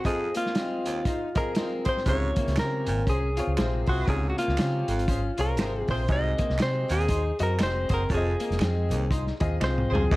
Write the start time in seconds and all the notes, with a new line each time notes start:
0.05 F2 C4 F4 G#4 D#5, kick, closed hi-hat
0.35 A#3 F4, closed hi-hat
0.46 snare
0.55 C4, snare, closed hi-hat
0.85 D#2, closed hi-hat
1.05 D#4 F4 G#4 C5, kick, closed hi-hat
1.35 C4 F4 G#4 A#4 D#5, kick, closed hi-hat
1.55 C4 F4 G#4 C5 D#5, snare, closed hi-hat
1.84 F4 G#4 C5, kick, closed hi-hat
1.89 C5
1.97 snare
2.06 C#2 G#2 C3 C#3 F4 G#4 C#5, kick, closed hi-hat
2.36 A#3, kick, closed hi-hat
2.47 C#2, snare, closed hi-hat
2.56 C#3 C4 A#4, finger snap, snare, closed hi-hat
2.87 G#1 A#2, closed hi-hat
3.07 C2 C#4 F4 G#4 C5, kick, closed hi-hat
3.37 C4 F4 G#4 C#5, closed hi-hat
3.47 C#2
3.57 A#1 C3 C4 F4 G#4 C5, finger snap, snare, closed hi-hat
3.86 C2 F4 F#4 G#4 C5, kick, open hi-hat
4.07 C#2 G#2 C3 C#3 F4 G#4 C#5, kick, closed hi-hat
4.30 F#4
4.38 A#3 F4, closed hi-hat
4.48 C#2, snare
4.57 C#3 C4, finger snap, snare, closed hi-hat
4.88 G#1 F2, closed hi-hat
4.99 closed hi-hat
5.08 C#4 F4 G#4 C5, kick, closed hi-hat
5.38 C2 C4 F4 G#4 A#4 C#5, closed hi-hat
5.57 G#1 C3 C4 F4 G#4 C5, finger snap, snare, closed hi-hat
5.88 A#1 F4 G#4 C5, kick, open hi-hat
6.08 C2 G#2 C3 C4 F#4 G#4 D#5, kick, closed hi-hat
6.38 A#3, kick, closed hi-hat
6.49 C2, snare
6.58 C3 C4, finger snap, snare, closed hi-hat
6.62 C5
6.89 D#2 A#2 G#4, closed hi-hat
7.00 closed hi-hat
7.08 D#4 F#4 G#4 C5, kick, closed hi-hat
7.39 F#2 C4 F#4 G#4 A#4 D#5, closed hi-hat
7.58 F1 C4 F#4 G#4 C5 D#5, finger snap, snare, closed hi-hat
7.63 C5
7.88 F#1 F#4 G#4 C5, kick, closed hi-hat
7.94 A#4
8.09 F1 F2 C4 F4 G#4 C#5, kick, closed hi-hat
8.14 G#4 D#5
8.40 A#3, closed hi-hat
8.50 F1, snare, closed hi-hat
8.59 F2 C4, finger snap, snare, closed hi-hat
8.90 C2 D#2, closed hi-hat
9.09 D#4 F4 G#4 C5, kick, closed hi-hat
9.27 snare
9.40 D#2 C4 F4 G#4 D#5, kick, closed hi-hat
9.59 C2 C4 F4 G#4 C5 D#5, finger snap, snare
9.64 C5
9.78 mid tom
9.88 C#2 F4 G#4 C5
9.94 G#4, floor tom
10.11 D#2 D#3 A#3 D#4 F#4 D#5, kick, crash